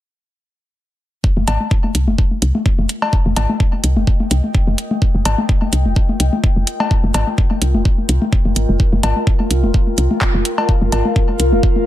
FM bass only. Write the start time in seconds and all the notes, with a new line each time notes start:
1.37 F1
1.48 G#1
1.95 C2
2.08 F1
2.42 C2
2.79 F1
3.26 F1
3.37 G#1
3.84 C2
3.97 F1
4.31 C2
4.67 F1
5.15 F1
5.25 G#1
5.73 C2
5.86 F1
6.20 C2
6.56 F1
7.04 F1
7.14 G#1
7.62 C2
7.75 F1
8.09 C2
8.45 F1
8.56 G#1
8.69 F1
8.93 F1
9.03 G#1
9.51 C2
9.63 F1
9.98 C2
10.34 F1
10.82 F1
10.92 G#1
11.40 C2
11.52 F1